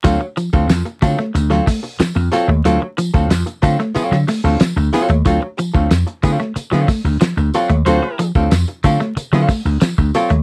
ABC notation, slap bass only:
X:1
M:4/4
L:1/16
Q:1/4=92
K:Clyd
V:1 name="Slap bass" clef=bass
D,, z2 D,, ^E,, z D, z D,,2 z3 E,, z _E,, | D,, z2 D,, ^E,, z D, z2 D, z D,, z D,, z _E,, | D,, z2 D,, ^E,, z D, z2 D, z D,, z D,, z _E,, | D,, z2 D,, ^E,, z D, z2 D, z D,, z D,, z _E,, |]